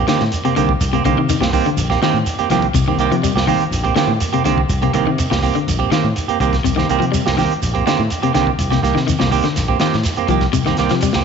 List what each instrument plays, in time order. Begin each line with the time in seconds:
0.07 clean electric guitar D3 D#3 A#3 C4 G4, snare, closed hi-hat, shekere
0.20 fingered electric bass A2, snare
0.32 closed hi-hat, shekere
0.45 clean electric guitar C3 A#3 C4 G4, muted fingered electric bass stroke, closed hi-hat
0.56 fingered electric bass C2, clean electric guitar D3 D#3 A#3 C4 G4, closed hi-hat, shekere
0.69 kick
0.81 fingered electric bass C2, kick, closed hi-hat, shekere
0.93 clean electric guitar C3 A#3 C4 G4, closed hi-hat
1.05 fingered electric bass C2, clean electric guitar D3 D#3 A#3 C4 G4, kick, closed hi-hat, shekere
1.17 fingered electric bass C3, clean electric guitar D#3
1.29 clean electric guitar D#3, closed hi-hat, shekere
1.40 fingered electric bass C2, clean electric guitar C3 A#3 C4 G4, snare
1.53 clean electric guitar D#3 A#3 C4 G4, kick, open hi-hat, shekere
1.66 clean electric guitar D3, closed hi-hat
1.77 fingered electric bass A#1, closed hi-hat, shekere
1.90 clean electric guitar A#3 C4 G4, kick, snare
2.02 clean electric guitar D#3 A#3 C4 G4, snare, closed hi-hat, shekere
2.13 fingered electric bass A2
2.26 closed hi-hat, shekere
2.38 clean electric guitar A#3 C4 G4, muted fingered electric bass stroke, closed hi-hat
2.50 fingered electric bass C2, clean electric guitar D#3 F3 A#3 C4 G4, kick, snare, closed hi-hat, shekere
2.62 kick, closed hi-hat
2.74 fingered electric bass C2, clean electric guitar C3, kick, closed hi-hat, shekere
2.88 clean electric guitar D#3 A#3 C4 G4
2.97 fingered electric bass C2, clean electric guitar D#3 A#3 C4 G4, closed hi-hat, shekere
3.10 fingered electric bass C3, clean electric guitar F3, closed hi-hat
3.23 clean electric guitar G3, closed hi-hat, shekere
3.34 fingered electric bass C2, clean electric guitar A#3 C4 G4, snare
3.47 clean electric guitar D#3 A#3 C4 G4, kick, open hi-hat, shekere
3.60 closed hi-hat
3.71 fingered electric bass A#1, closed hi-hat, shekere
3.84 clean electric guitar A#3 C4 G4, kick, closed hi-hat
3.96 clean electric guitar D3 D#3 A#3 C4 G4, snare, closed hi-hat, shekere
4.07 fingered electric bass A2
4.20 closed hi-hat, shekere
4.33 clean electric guitar C3 A#3 C4 G4, muted fingered electric bass stroke, closed hi-hat
4.45 fingered electric bass C2, clean electric guitar D3 D#3 A#3 C4 G4, closed hi-hat, shekere
4.58 kick
4.69 fingered electric bass C2, kick, closed hi-hat, shekere
4.82 clean electric guitar C3 A#3 C4 G4, closed hi-hat
4.94 fingered electric bass C2, clean electric guitar D#3 A#3 C4 G4, muted clean electric guitar stroke, kick, closed hi-hat, shekere
5.06 fingered electric bass C3, clean electric guitar D#3
5.18 muted clean electric guitar stroke, closed hi-hat, shekere
5.30 fingered electric bass C2, clean electric guitar A#3 C4 G4, muted clean electric guitar stroke, snare
5.43 clean electric guitar A#3 C4 G4, kick, open hi-hat, shekere
5.55 clean electric guitar D3, closed hi-hat
5.67 fingered electric bass A#1, closed hi-hat, shekere
5.79 clean electric guitar A#3 C4 G4, kick
5.92 clean electric guitar D#3 A#3 C4 G4, snare, closed hi-hat, shekere
6.04 fingered electric bass A2
6.16 closed hi-hat, shekere
6.28 clean electric guitar A#3 C4 G4, muted fingered electric bass stroke, closed hi-hat
6.40 fingered electric bass C2, clean electric guitar D#3 A#3 C4 G4, kick, closed hi-hat, shekere
6.53 kick, snare, closed hi-hat
6.64 fingered electric bass C2, clean electric guitar C3, kick, closed hi-hat, shekere
6.76 clean electric guitar D#3 A#3 C4 G4, snare
6.89 fingered electric bass C2, clean electric guitar D#3 A#3 C4 G4, closed hi-hat, shekere
7.00 fingered electric bass C3, clean electric guitar F3, closed hi-hat
7.12 clean electric guitar G3, closed hi-hat, shekere
7.26 fingered electric bass C2, clean electric guitar A#3 C4 G4, snare
7.37 clean electric guitar D#3 A#3 C4 G4, kick, snare, open hi-hat, shekere
7.51 closed hi-hat
7.62 fingered electric bass A#1, closed hi-hat, shekere
7.74 clean electric guitar A#3 C4 G4, kick, closed hi-hat
7.86 clean electric guitar D3 D#3 A#3 C4 G4, snare, closed hi-hat, shekere
7.99 fingered electric bass A2
8.10 closed hi-hat, shekere
8.23 clean electric guitar C3 A#3 C4 G4, muted fingered electric bass stroke, closed hi-hat
8.34 fingered electric bass C2, clean electric guitar D3 D#3 A#3 C4 G4, snare, closed hi-hat, shekere
8.47 kick
8.59 fingered electric bass C2, kick, closed hi-hat, shekere
8.71 clean electric guitar C3 A#3 G4, muted clean electric guitar stroke, snare, closed hi-hat
8.83 fingered electric bass C2, clean electric guitar D#3 A#3 G4, muted clean electric guitar stroke, kick, snare, closed hi-hat, shekere
8.95 fingered electric bass C3, clean electric guitar D#3, snare
9.07 clean electric guitar D#3, closed hi-hat, shekere
9.19 fingered electric bass C2, clean electric guitar C3 A#3 C4 G4, snare
9.31 clean electric guitar D#3 A#3 C4 G4, kick, open hi-hat, shekere
9.44 clean electric guitar D3, snare, closed hi-hat
9.56 fingered electric bass A#1, snare, closed hi-hat, shekere
9.68 clean electric guitar A#3 C4 G4, kick
9.80 clean electric guitar D#3 A#3 C4 G4, snare, closed hi-hat, shekere
9.93 fingered electric bass A2, snare
10.03 snare, closed hi-hat, shekere
10.16 clean electric guitar A#3 C4 G4, muted fingered electric bass stroke, closed hi-hat
10.28 fingered electric bass C2, clean electric guitar D#3 F3 A#3 G4, muted clean electric guitar stroke, kick, closed hi-hat, shekere
10.41 kick, snare, closed hi-hat
10.53 fingered electric bass C2, clean electric guitar C3, kick, closed hi-hat, shekere
10.66 clean electric guitar D#3 A#3 C4 G4, snare
10.77 fingered electric bass C2, clean electric guitar D#3 A#3 C4 G4, snare, closed hi-hat, shekere
10.89 fingered electric bass C3, clean electric guitar F3, snare, closed hi-hat
11.01 clean electric guitar G3, closed hi-hat, shekere
11.13 fingered electric bass C2, clean electric guitar A#3 C4 G4, snare